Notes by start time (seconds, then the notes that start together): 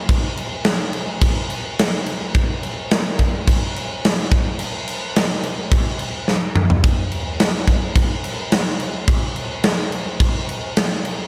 0.09 kick, crash
0.37 crash
0.64 snare, crash
0.93 crash
1.21 kick, crash
1.50 crash
1.79 snare, crash
2.06 crash
2.34 kick, crash
2.63 crash
2.91 snare, crash
3.19 kick, crash
3.48 kick, crash
3.76 crash
4.05 snare, crash
4.31 kick, crash
4.59 crash
4.88 crash
5.16 snare, crash
5.43 crash
5.72 kick, crash
5.99 crash
6.28 snare
6.56 mid tom
6.70 floor tom
6.83 kick, crash
7.12 crash
7.40 snare, crash
7.67 kick, crash
7.96 kick, crash
8.24 crash
8.52 snare, crash
8.80 crash
9.08 kick, crash
9.36 crash
9.63 snare, crash
9.92 crash
10.20 kick, crash
10.49 crash
10.77 snare, crash
11.05 crash